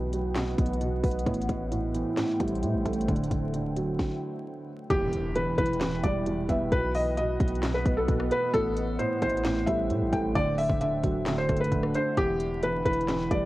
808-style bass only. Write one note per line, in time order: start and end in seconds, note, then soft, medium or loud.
0.00 0.55 B1 loud
0.58 1.02 B1 loud
1.04 1.25 B1 loud
1.26 1.48 A1 loud
1.49 2.04 A1 loud
2.40 2.64 A1 loud
2.63 2.76 A2 loud
2.74 2.85 A1 loud
2.86 3.07 A1 loud
3.08 3.30 D1 loud
3.31 3.96 D1 loud
4.90 5.56 E1 loud
5.58 6.02 E1 loud
6.04 6.47 E1 loud
6.49 6.71 E1 loud
6.72 7.37 B1 loud
7.40 7.84 B1 loud
7.86 8.07 B1 loud
8.08 8.30 B1 loud
8.54 8.97 A1 loud
9.22 9.66 A1 loud
9.67 9.92 A1 loud
9.90 10.03 A2 loud
10.01 10.12 A1 loud
10.13 10.35 A1 loud
10.36 10.68 D1 loud
10.70 11.02 D1 loud
11.04 11.47 D1 loud
11.49 11.71 C1 loud
11.72 11.94 D1 loud
12.17 12.83 E1 loud
12.86 13.29 E1 loud
13.31 13.45 E1 loud